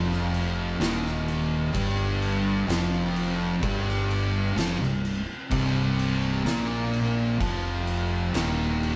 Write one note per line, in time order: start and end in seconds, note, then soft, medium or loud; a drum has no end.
0.00 0.76 F1 medium
0.00 0.78 F2 medium
0.00 0.79 F3 loud
0.12 snare soft
0.34 crash medium
0.80 1.70 D#1 medium
0.80 1.72 D#2 medium
0.80 1.72 D#3 loud
0.80 snare loud
0.80 crash medium
1.06 snare soft
1.28 crash medium
1.74 2.65 G1 loud
1.74 2.67 G2 loud
1.74 2.68 G3 loud
1.74 kick loud
1.74 crash medium
2.22 crash medium
2.67 3.58 F1 loud
2.67 3.60 F2 loud
2.67 3.61 F3 loud
2.67 snare loud
2.67 crash medium
3.16 crash medium
3.63 4.53 G1 medium
3.63 4.55 G2 medium
3.63 4.56 G3 loud
3.63 kick loud
3.63 crash medium
3.88 snare soft
4.11 crash medium
4.56 4.78 F1 medium
4.56 4.79 F2 loud
4.56 4.79 F3 loud
4.56 snare loud
4.56 crash medium
4.80 5.24 C1 medium
4.80 5.18 C2 medium
4.80 snare soft
5.05 crash medium
5.50 6.42 C1 loud
5.50 6.44 C2 loud
5.50 6.44 C3 loud
5.50 kick loud
5.50 crash medium
5.99 crash medium
6.44 7.36 A#1 loud
6.44 7.38 A#2 loud
6.44 7.38 A#3 medium
6.44 snare loud
6.44 crash medium
6.93 crash medium
7.38 8.31 F1 medium
7.38 8.33 F2 medium
7.38 8.33 F3 loud
7.38 kick loud
7.38 crash medium
7.87 crash medium
8.33 8.96 D#1 medium
8.33 8.96 D#2 medium
8.33 8.96 D#3 loud
8.33 snare loud
8.33 crash medium
8.83 crash medium